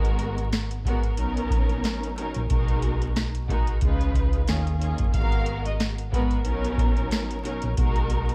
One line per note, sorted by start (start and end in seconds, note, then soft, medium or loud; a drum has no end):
0.00 1.19 G#1 loud
0.00 0.64 G#2 loud
0.00 0.64 G#3 medium
0.00 0.64 B3 medium
0.00 0.64 F#4 medium
0.00 0.64 A#4 loud
0.05 closed hi-hat medium
0.19 closed hi-hat medium
0.38 closed hi-hat soft
0.53 snare loud
0.53 closed hi-hat medium
0.71 closed hi-hat medium
0.85 1.16 G#2 loud
0.85 1.16 G#3 medium
0.85 1.16 B3 medium
0.85 1.16 F#4 medium
0.85 1.17 A#4 medium
0.85 kick medium
0.85 closed hi-hat medium
1.03 closed hi-hat medium
1.17 1.47 B1 loud
1.17 2.10 F#3 medium
1.17 2.10 B3 loud
1.17 2.10 C#4 medium
1.17 2.10 D#4 medium
1.17 2.10 A#4 loud
1.17 closed hi-hat medium
1.37 closed hi-hat medium
1.50 1.79 A#1 medium
1.50 kick medium
1.50 closed hi-hat medium
1.69 closed hi-hat soft
1.84 snare loud
1.84 closed hi-hat medium
2.03 closed hi-hat soft
2.17 2.48 B2 medium
2.17 2.48 F#3 medium
2.17 2.48 C#4 medium
2.17 2.48 D#4 medium
2.17 2.49 A#4 medium
2.17 closed hi-hat medium
2.34 2.49 A#1 medium
2.34 closed hi-hat medium
2.49 3.78 B1 loud
2.49 3.27 B2 loud
2.49 3.27 G#3 medium
2.49 3.27 D#4 medium
2.49 3.27 F#4 medium
2.49 3.27 A#4 loud
2.49 kick loud
2.49 closed hi-hat medium
2.68 closed hi-hat medium
2.82 closed hi-hat medium
3.02 closed hi-hat soft
3.16 snare loud
3.16 closed hi-hat medium
3.35 closed hi-hat medium
3.48 3.79 B2 medium
3.48 3.79 G#3 medium
3.48 3.80 D#4 medium
3.48 3.80 F#4 medium
3.48 3.80 A#4 medium
3.48 kick medium
3.48 closed hi-hat medium
3.67 closed hi-hat medium
3.81 4.11 C#2 loud
3.81 4.44 C#3 loud
3.81 4.44 G#3 medium
3.81 4.44 D#4 medium
3.81 4.44 F4 medium
3.81 4.44 B4 loud
3.81 kick medium
3.81 closed hi-hat medium
4.01 closed hi-hat medium
4.14 4.43 C#2 medium
4.14 kick medium
4.14 closed hi-hat medium
4.33 closed hi-hat soft
4.48 4.92 D#2 loud
4.48 4.77 D#3 medium
4.48 4.77 A#3 medium
4.48 4.77 C#4 medium
4.48 4.77 F4 medium
4.48 4.78 G#4 medium
4.48 snare loud
4.48 closed hi-hat medium
4.67 closed hi-hat medium
4.78 5.10 D#3 medium
4.78 5.10 A#3 medium
4.78 5.10 C#4 medium
4.78 5.10 F4 medium
4.78 5.11 G#4 medium
4.78 closed hi-hat medium
4.98 5.12 F#1 medium
4.98 kick medium
4.98 closed hi-hat medium
5.13 6.46 G#1 loud
5.13 5.92 G#2 loud
5.13 5.92 G#3 medium
5.13 5.92 B3 medium
5.13 5.92 F#4 medium
5.13 5.92 A#4 loud
5.13 5.62 F5 loud
5.13 kick loud
5.13 closed hi-hat medium
5.32 closed hi-hat medium
5.46 closed hi-hat medium
5.65 5.79 D#5 medium
5.65 closed hi-hat medium
5.80 snare loud
5.80 closed hi-hat medium
5.98 closed hi-hat medium
6.11 6.44 G#2 medium
6.11 6.44 G#3 medium
6.11 6.44 B3 loud
6.11 6.44 F#4 medium
6.11 6.44 A#4 loud
6.11 6.29 B4 medium
6.11 kick medium
6.11 closed hi-hat medium
6.31 closed hi-hat medium
6.45 6.74 B1 loud
6.45 7.37 F#3 medium
6.45 7.37 B3 loud
6.45 7.38 C#4 loud
6.45 7.38 D#4 loud
6.45 7.38 A#4 loud
6.45 closed hi-hat medium
6.65 closed hi-hat medium
6.78 7.07 A#1 medium
6.78 kick loud
6.78 closed hi-hat medium
6.97 closed hi-hat soft
7.11 snare loud
7.11 closed hi-hat medium
7.31 closed hi-hat medium
7.43 7.75 B2 medium
7.43 7.75 F#3 medium
7.43 7.75 C#4 medium
7.43 7.75 D#4 medium
7.43 7.75 A#4 medium
7.43 closed hi-hat medium
7.62 7.76 A#1 medium
7.62 closed hi-hat medium
7.77 8.35 B1 loud
7.77 8.35 B2 loud
7.77 8.35 G#3 medium
7.77 8.35 D#4 medium
7.77 8.35 F#4 loud
7.77 8.35 A#4 loud
7.77 kick loud
7.77 closed hi-hat medium
7.96 closed hi-hat medium
8.10 closed hi-hat medium
8.29 closed hi-hat soft